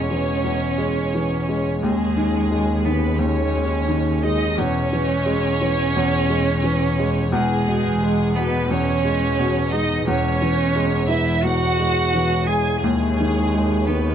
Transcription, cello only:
0.00 1.77 C#4 loud
1.80 2.86 G#3 loud
2.85 3.22 B3 medium
3.21 4.24 C#4 loud
4.23 4.57 D#4 loud
4.58 7.29 C#4 loud
7.32 8.36 G#3 loud
8.35 8.69 B3 loud
8.67 9.74 C#4 loud
9.72 10.06 D#4 loud
10.07 11.08 C#4 loud
11.08 11.44 E4 loud
11.42 12.48 F#4 loud
12.47 12.80 G#4 loud
12.80 13.88 G#3 loud
13.86 14.15 B3 medium

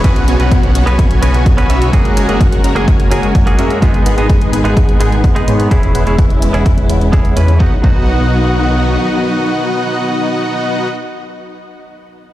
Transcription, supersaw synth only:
0.04 0.25 B3 medium
0.04 0.25 C#4 medium
0.04 0.25 F#4 medium
0.04 0.25 C#5 medium
0.04 0.25 F#5 medium
0.28 0.37 B3 medium
0.28 0.37 C#4 medium
0.28 0.37 F#4 medium
0.28 0.37 C#5 medium
0.28 0.37 G#5 loud
0.40 0.72 B3 medium
0.40 0.72 C#4 medium
0.40 0.72 F#4 medium
0.40 0.72 C#5 medium
0.40 0.72 F#5 loud
0.75 0.84 B3 medium
0.75 0.84 C#4 medium
0.75 0.84 F#4 medium
0.75 0.84 C#5 medium
0.75 0.84 F#5 loud
0.87 1.20 B3 medium
0.87 1.19 C#4 medium
0.87 1.20 F#4 medium
0.87 1.19 C#5 medium
0.87 1.20 G#5 medium
1.22 1.67 B3 medium
1.22 1.67 C#4 medium
1.22 1.67 F#4 medium
1.22 1.67 C#5 medium
1.22 1.67 G#5 medium
1.70 1.90 B3 loud
1.70 1.90 C#4 medium
1.70 1.90 F#4 medium
1.70 1.90 C#5 medium
1.70 1.90 E5 loud
1.93 2.14 F#4 medium
1.93 2.14 F#5 medium
2.17 2.26 G#3 medium
2.17 2.26 C#4 medium
2.17 2.26 F#4 medium
2.17 2.26 A#4 medium
2.17 2.26 G#5 loud
2.29 2.61 G#3 medium
2.29 2.61 C#4 medium
2.29 2.61 F#4 medium
2.29 2.61 A#4 medium
2.29 2.61 F#5 loud
2.64 2.73 G#3 medium
2.64 2.73 C#4 medium
2.64 2.73 F#4 medium
2.64 2.73 A#4 medium
2.64 2.73 A#5 loud
2.76 3.09 G#3 medium
2.76 3.09 C#4 medium
2.76 3.08 F#4 medium
2.76 3.09 A#4 medium
2.76 3.09 G#5 medium
3.11 3.56 G#3 medium
3.11 3.56 C#4 medium
3.11 3.56 F#4 medium
3.11 3.56 A#4 medium
3.11 3.56 G#5 medium
3.59 3.79 G#3 medium
3.59 3.79 C#4 medium
3.59 3.79 F#4 medium
3.59 3.79 A#4 medium
3.59 3.79 E5 loud
3.82 4.03 B3 medium
3.82 4.03 D#4 medium
4.06 4.15 G#3 medium
4.06 4.15 B3 medium
4.06 4.15 D#4 medium
4.06 4.15 B4 medium
4.06 4.15 F#5 loud
4.18 4.50 G#3 medium
4.18 4.50 B3 medium
4.18 4.50 D#4 medium
4.18 4.50 B4 medium
4.18 4.50 D#5 medium
4.53 4.62 G#3 medium
4.53 4.62 B3 medium
4.53 4.62 D#4 medium
4.53 4.62 B4 medium
4.53 4.62 G#5 loud
4.65 4.97 G#3 medium
4.65 4.98 B3 medium
4.65 4.98 D#4 medium
4.65 4.97 B4 medium
4.65 4.97 F#5 medium
5.00 5.45 G#3 medium
5.00 5.45 B3 medium
5.00 5.45 D#4 medium
5.00 5.45 B4 medium
5.00 5.45 F#5 medium
5.48 5.68 G#3 loud
5.48 5.68 B3 medium
5.48 5.68 D#4 medium
5.48 5.68 B4 medium
5.48 5.68 C#5 loud
5.71 5.92 G#3 medium
5.71 5.92 C#4 medium
5.71 5.92 E4 medium
5.71 5.92 B4 medium
5.95 6.04 G#3 medium
5.95 6.04 C#4 medium
5.95 6.04 E4 medium
5.95 6.04 B4 medium
5.95 6.04 F#5 loud
6.07 6.39 G#3 medium
6.07 6.39 C#4 medium
6.07 6.39 E4 medium
6.07 6.39 B4 medium
6.07 6.39 E5 loud
6.42 6.51 G#3 medium
6.42 6.51 C#4 medium
6.42 6.51 E4 medium
6.42 6.51 B4 medium
6.42 6.51 G#5 medium
6.54 6.87 G#3 medium
6.54 6.87 C#4 medium
6.54 6.87 E4 medium
6.54 6.87 B4 medium
6.54 6.87 F#5 medium
6.89 7.34 G#3 medium
6.89 7.34 C#4 medium
6.89 7.34 E4 medium
6.89 7.34 B4 medium
6.89 7.34 F#5 medium
7.37 7.57 G#3 medium
7.37 7.57 C#4 medium
7.37 7.57 E4 medium
7.37 7.57 B4 medium
7.37 7.57 C#5 medium
7.60 7.73 B3 medium
7.60 7.73 D#4 medium
7.60 7.73 F#4 medium
7.60 7.73 D#5 medium
7.60 7.73 F#5 medium
7.84 10.88 B3 medium
7.84 10.87 D#4 medium
7.84 10.87 F#4 medium
7.84 10.88 D#5 medium
7.84 10.87 F#5 medium

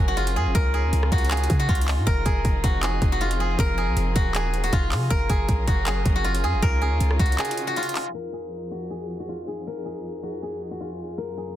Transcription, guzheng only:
0.00 0.36 G#4 medium
0.00 0.54 A#4 loud
0.08 0.23 F#4 medium
0.17 1.18 F4 medium
0.36 0.73 G#4 medium
0.55 2.06 A#4 loud
0.74 1.30 G#4 medium
1.12 1.59 F#4 medium
1.31 2.25 G#4 medium
1.59 1.75 F#4 medium
1.69 2.70 F4 medium
2.07 3.59 A#4 loud
2.25 2.82 G#4 medium
2.64 3.12 F#4 medium
2.83 3.40 G#4 medium
3.12 3.27 F#4 medium
3.21 4.21 F4 medium
3.40 3.77 G#4 medium
3.60 5.10 A#4 loud
3.78 4.35 G#4 medium
4.15 4.63 F#4 medium
4.35 5.29 G#4 medium
4.64 4.79 F#4 medium
4.73 5.74 F4 medium
5.10 6.62 A#4 loud
5.30 5.86 G#4 medium
5.68 6.15 F#4 medium
5.87 6.43 G#4 medium
6.16 6.30 F#4 medium
6.24 7.26 F4 medium
6.44 6.81 G#4 medium
6.63 8.14 A#4 loud
6.82 7.38 G#4 medium
7.20 7.67 F#4 medium
7.39 8.32 G#4 medium
7.67 7.83 F#4 medium
7.77 8.77 F4 medium
8.14 9.67 A#4 loud
8.33 8.90 G#4 medium
8.71 9.19 F#4 medium
8.90 9.47 G#4 medium
9.20 9.35 F#4 medium
9.29 10.29 F4 medium
9.48 9.85 G#4 medium
9.67 11.17 A#4 loud
9.85 10.42 G#4 medium
10.23 10.71 F#4 medium
10.43 11.37 G#4 medium
10.71 10.86 F#4 medium
10.80 11.56 F4 medium
11.18 11.56 A#4 loud
11.37 11.56 G#4 medium

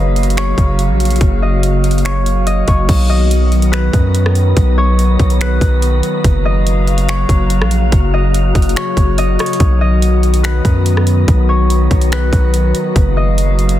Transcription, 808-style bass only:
0.00 0.54 F#1 loud
0.58 0.91 F#1 loud
0.89 1.19 A#1 loud
1.21 2.64 F#1 loud
2.68 2.88 F#1 loud
2.89 3.90 B1 loud
3.93 4.54 F#2 loud
4.57 5.17 B1 loud
5.20 5.60 B1 loud
5.61 6.02 B1 loud
6.24 7.25 F#1 loud
7.29 7.62 F#1 loud
7.61 7.91 A#1 loud
7.92 8.53 F#1 loud
8.55 8.75 F#1 loud
8.97 9.37 F#1 loud
9.60 10.61 B1 loud
10.65 11.25 F#2 loud
11.28 11.88 B1 loud
11.91 12.31 B1 loud
12.33 12.73 B1 loud
12.96 13.79 F#1 loud

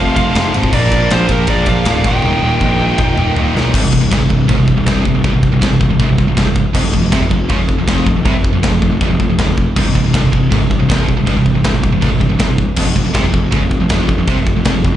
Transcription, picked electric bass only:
0.00 0.13 F1 loud
0.16 0.32 F1 loud
0.36 0.51 F1 loud
0.55 0.73 G#1 medium
0.73 0.88 A#1 loud
0.92 1.07 A#1 medium
1.12 1.27 A#1 medium
1.29 1.45 A#1 medium
1.48 1.63 A#1 medium
1.67 1.82 A#1 medium
1.86 2.01 D1 loud
2.04 2.20 D#1 medium
2.24 2.39 D#1 loud
2.42 2.58 D#1 medium
2.61 2.92 A#1 loud
2.98 3.14 D#1 medium
3.18 3.33 D#1 medium
3.37 3.52 D#1 medium
3.55 3.71 B1 medium
3.74 3.82 C1 loud
3.83 3.92 C1 medium
3.93 4.01 C1 medium
4.01 4.10 C1 medium
4.12 4.20 G1 loud
4.21 4.29 C1 medium
4.31 4.48 C1 medium
4.49 4.57 G#1 loud
4.58 4.75 C1 medium
4.76 4.85 C1 medium
4.87 5.04 C1 loud
5.06 5.13 C1 medium
5.14 5.23 C1 medium
5.24 5.33 G1 loud
5.34 5.51 C1 medium
5.52 5.61 C1 medium
5.62 5.69 C1 loud
5.70 5.79 C1 medium
5.81 5.88 C1 medium
5.88 5.98 C1 medium
5.99 6.07 D1 medium
6.08 6.17 C1 medium
6.18 6.26 C1 medium
6.27 6.36 C1 medium
6.37 6.46 C1 loud
6.46 6.64 C1 loud
6.75 6.83 F1 loud
6.85 6.93 F1 medium
6.94 7.02 F1 medium
7.04 7.11 F1 medium
7.12 7.21 C2 medium
7.22 7.30 F1 medium
7.31 7.49 F1 medium
7.50 7.59 C#2 loud
7.60 7.77 F1 medium
7.78 7.87 F1 medium
7.88 8.05 F1 loud
8.06 8.15 F1 medium
8.15 8.24 F1 medium
8.25 8.34 C2 loud
8.35 8.53 F1 medium
8.54 8.63 F1 medium
8.64 8.72 F1 loud
8.72 8.81 F1 medium
8.82 8.91 F1 medium
8.91 9.00 F1 medium
9.01 9.10 G1 loud
9.12 9.19 F1 medium
9.20 9.29 F1 medium
9.30 9.38 F1 medium
9.39 9.47 F1 loud
9.49 9.66 F1 medium
9.77 9.85 C1 loud
9.87 9.95 C1 medium
9.95 10.04 C1 medium
10.05 10.13 C1 medium
10.14 10.23 G1 medium
10.24 10.32 C1 medium
10.33 10.50 C1 medium
10.52 10.60 G#1 loud
10.62 10.79 C1 medium
10.81 10.89 C1 medium
10.90 11.07 C1 loud
11.08 11.17 C1 medium
11.18 11.26 C1 medium
11.27 11.36 G1 medium
11.36 11.54 C1 medium
11.55 11.64 C1 medium
11.65 11.73 C1 loud
11.74 11.83 C1 medium
11.84 11.92 C1 medium
11.92 12.01 C1 medium
12.02 12.10 D1 medium
12.11 12.20 C1 medium
12.21 12.29 C1 medium
12.30 12.39 C1 medium
12.40 12.47 C1 loud
12.48 12.66 C1 medium
12.77 12.85 F1 loud
12.86 12.95 F1 medium
12.96 13.05 F1 medium
13.05 13.14 F1 medium
13.15 13.24 C2 loud
13.24 13.33 F1 medium
13.34 13.51 F1 medium
13.53 13.61 C#2 loud
13.62 13.79 F1 medium
13.80 13.89 F1 medium
13.90 14.08 F1 loud
14.09 14.17 F1 medium
14.18 14.27 F1 medium
14.28 14.36 C2 medium
14.37 14.55 F1 medium
14.55 14.65 F1 medium
14.65 14.74 F1 loud
14.76 14.84 F1 medium
14.85 14.93 F1 medium

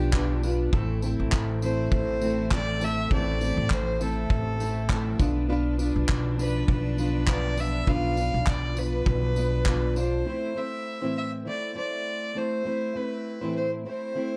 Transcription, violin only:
0.00 0.40 G4 medium
1.63 1.90 C5 medium
1.94 2.48 C5 loud
2.53 2.85 D5 loud
2.84 3.12 E5 loud
3.13 3.75 D5 loud
3.73 4.03 C5 loud
4.01 5.20 A4 medium
6.41 6.67 B4 medium
6.71 7.31 B4 medium
7.29 7.61 D5 loud
7.60 7.91 E5 loud
7.90 8.51 F5 loud
8.49 8.80 D5 loud
8.79 9.97 B4 medium
9.98 10.59 C5 medium
10.58 11.16 E5 loud
11.18 11.31 E5 medium
11.48 11.75 D5 medium
11.78 12.39 D5 medium
12.37 12.98 C5 medium
12.97 13.56 B4 medium
13.57 13.70 C5 medium
13.87 14.37 C5 medium

